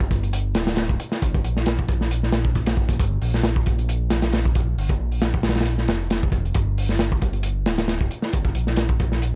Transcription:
Already playing: detuned saw bass G1
0.00 kick
0.11 kick, closed hi-hat
0.23 closed hi-hat
0.33 closed hi-hat
0.55 detuned saw bass D1, snare, closed hi-hat
0.67 snare, closed hi-hat
0.76 snare, closed hi-hat
0.89 kick
1.00 closed hi-hat
1.12 snare
1.22 detuned saw bass G1, kick, closed hi-hat
1.34 kick
1.44 detuned saw bass A#1, closed hi-hat
1.57 snare
1.66 snare, closed hi-hat
1.79 kick
1.89 kick, closed hi-hat
2.01 snare
2.11 closed hi-hat
2.23 snare
2.32 snare, closed hi-hat
2.45 kick
2.55 kick, closed hi-hat
2.66 snare, closed hi-hat
2.77 kick
2.89 kick, closed hi-hat
3.00 detuned saw bass G1, kick, closed hi-hat
3.22 detuned saw bass A#1, open hi-hat
3.34 snare
3.44 snare, closed hi-hat
3.56 kick
3.66 kick, closed hi-hat
3.79 closed hi-hat
3.89 closed hi-hat
4.10 snare, closed hi-hat
4.22 snare, closed hi-hat
4.32 snare, closed hi-hat
4.45 kick
4.55 kick, closed hi-hat
4.77 detuned saw bass G1, open hi-hat
4.89 kick, closed hi-hat
4.99 detuned saw bass A#1
5.12 open hi-hat
5.22 snare, closed hi-hat
5.34 kick
5.43 snare, closed hi-hat
5.49 snare, closed hi-hat
5.55 snare, closed hi-hat
5.61 snare, closed hi-hat
5.65 closed hi-hat
5.78 snare
5.88 detuned saw bass F1, snare, closed hi-hat
6.10 snare, closed hi-hat
6.23 kick
6.32 kick, closed hi-hat
6.45 closed hi-hat
6.54 detuned saw bass G1, kick, closed hi-hat
6.78 open hi-hat
6.89 snare
6.99 snare, closed hi-hat
7.12 kick
7.22 kick, closed hi-hat
7.33 closed hi-hat
7.43 closed hi-hat
7.66 detuned saw bass D1, snare, closed hi-hat
7.78 snare, closed hi-hat
7.88 snare, closed hi-hat
8.01 kick
8.11 closed hi-hat
8.22 snare
8.33 detuned saw bass G1, kick, closed hi-hat
8.45 kick
8.55 detuned saw bass A#1, closed hi-hat
8.67 snare
8.76 snare, closed hi-hat
8.89 kick
9.00 kick, closed hi-hat
9.12 snare
9.22 closed hi-hat

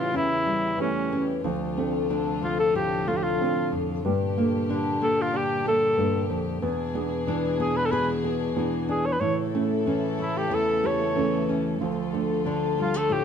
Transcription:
Already playing: nylon-string guitar A2 E3 C#4, string section C#3 G3 E4 G4, felt piano E3 A3 C#4
0.00 cor anglais F4
0.13 nylon-string guitar E2 C#4, cor anglais E4
0.46 nylon-string guitar G3
0.78 nylon-string guitar E3, felt piano A3 C#4 G4, cor anglais C#4
1.12 nylon-string guitar C#4
1.44 nylon-string guitar D2, string section C3 F3 D4 F4, felt piano F3
1.77 nylon-string guitar A3, felt piano C4 D4 A4
2.10 nylon-string guitar D3 C4, felt piano D4
2.42 nylon-string guitar A3, cor anglais F4
2.59 cor anglais A4
2.74 nylon-string guitar A2 F4, cor anglais G4
3.08 nylon-string guitar A3, cor anglais F4, felt piano A4
3.16 cor anglais G4
3.23 cor anglais F4
3.41 felt piano C4 D4 A4
3.72 nylon-string guitar F2
4.04 nylon-string guitar G2, string section A#2 G3 D4 G4, felt piano G3
4.37 felt piano A#3 D4 A4, nylon-string guitar A#3
4.69 nylon-string guitar D3 D4, felt piano D4
5.01 nylon-string guitar A#3, cor anglais A4
5.21 cor anglais F4
5.33 nylon-string guitar D3 D4, cor anglais G4
5.66 nylon-string guitar A#3, felt piano A4, cor anglais A4
5.97 nylon-string guitar G2, felt piano A#3 D4 A4
6.30 nylon-string guitar F2
6.62 nylon-string guitar E2, string section B2 E3 G#3 D4 G#4, felt piano B3
6.94 felt piano B3 D4 G#4, nylon-string guitar B3
7.27 nylon-string guitar E3 D4, felt piano D4
7.60 nylon-string guitar B3, cor anglais G#4
7.77 cor anglais B4
7.86 cor anglais A4
7.91 nylon-string guitar B2 G#4, cor anglais B4
8.24 nylon-string guitar B3, felt piano G#4
8.56 nylon-string guitar E3, felt piano B3 D4 G#4
8.89 nylon-string guitar D4, cor anglais G#4
9.06 cor anglais C#5
9.12 cor anglais B4
9.20 nylon-string guitar A2, string section C#3 E3 A3 E4 A4, felt piano E3, cor anglais C#5
9.55 felt piano A3 C#4 A4, nylon-string guitar A3
9.86 nylon-string guitar E3 C#4, felt piano C#4
10.19 nylon-string guitar A3, cor anglais E4
10.38 cor anglais G4
10.50 nylon-string guitar E2 E4
10.54 cor anglais A4
10.84 nylon-string guitar A3, felt piano G4, cor anglais C#5
11.00 felt piano A4
11.15 nylon-string guitar E3, felt piano A3 C#4 A4
11.49 nylon-string guitar C#4
11.80 nylon-string guitar D2, string section D3 F3 F4 A4, felt piano F3
12.13 felt piano A3 D4 A4, nylon-string guitar A3
12.45 nylon-string guitar D3 D4, felt piano D4
12.78 nylon-string guitar G3, cor anglais F4
12.94 nylon-string guitar A3, cor anglais A4
13.09 nylon-string guitar A2 F4, cor anglais G4

